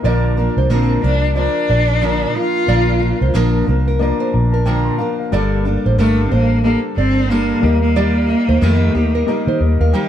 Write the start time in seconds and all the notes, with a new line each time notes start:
0.03 A#1 A#2 D3 F3 A#3 D4 F4 A#4 D5
0.37 F3 A#3 D4 A#4
0.57 C2 C5
0.70 A#1 A#2 D3 F3 A#3 C4 D4 A#4
1.02 C2 F3 A#3 D4 A#4 C5
1.35 F3 A#3 D4 F4 A#4 C5
1.70 A#1 D5
2.01 A#2 D3 F3 A#3 D4 A#4
2.34 F3 A#3 D4 F4 A#4
2.66 A#1 A#2 D3 F3 A#3 D4 F4 A#4 D5 F5
3.00 F3 A#3 D4 A#4
3.21 C2 C5
3.34 A#1 A#2 D3 F3 A#3 D4 A#4
3.67 C2 F3 A#3 D4 A#4
3.88 A#4
3.99 F3 A#3 D4 F4 A#4 D5
4.20 C5
4.33 A#1 A#5
4.52 A#4 A5
4.66 A#2 D3 F3 A#3 D4 A#4 G5
4.85 C6
4.98 F3 A#3 D4 A#4 F5 A#5
5.19 F5
5.32 G1 G2 D3 G3 A#3 D4 A4 D5
5.65 G3 A#3 D4 A4
5.86 A1 C5
5.98 G1 G2 D3 G3 A3 A#3 D4 A4 A#4
6.27 C4
6.32 A1 G3 A#3 D4 A4 C5
6.63 G3 A#3 D4 A4
6.97 G1 C4 D5
7.29 G2 D3 G3 A#3 D4 A4
7.62 D#2 G3 A#3 D#4 G4 A#4
7.66 A#3
7.82 A#3
7.96 D#3 G3 A#3 D#4 G4 D5
8.28 A#3 D#4 G4
8.49 D#2 C5
8.61 F2 D#3 G3 A#3 D#4 G4 A#4
8.95 D#2 A#3 D#4 G4
9.15 A#4
9.27 G3 A#3 D#4 G4 A#4
9.47 D#3 C5
9.60 D#2 D#5
9.80 D#2 A#4 F5
9.93 D#3 G3 A#3 D#4 G4 G5